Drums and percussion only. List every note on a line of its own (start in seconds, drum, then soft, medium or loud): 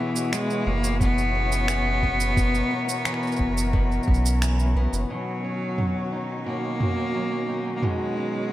0.16 shaker medium
0.33 finger snap medium
0.33 shaker soft
0.50 shaker soft
0.84 shaker medium
1.01 kick loud
1.01 shaker medium
1.18 shaker soft
1.52 shaker medium
1.68 finger snap loud
1.68 shaker soft
2.03 kick medium
2.20 shaker medium
2.37 kick loud
2.37 shaker soft
2.55 shaker soft
2.89 shaker medium
3.05 finger snap medium
3.05 shaker soft
3.14 finger snap soft
3.23 shaker soft
3.27 shaker soft
3.32 shaker soft
3.36 kick medium
3.36 shaker soft
3.58 shaker medium
3.73 kick loud
3.92 shaker soft
4.03 shaker soft
4.08 kick medium
4.14 shaker soft
4.26 shaker medium
4.42 finger snap loud
4.42 shaker medium
4.59 shaker soft
4.93 shaker medium
5.78 mid tom medium
6.80 mid tom medium
7.82 mid tom medium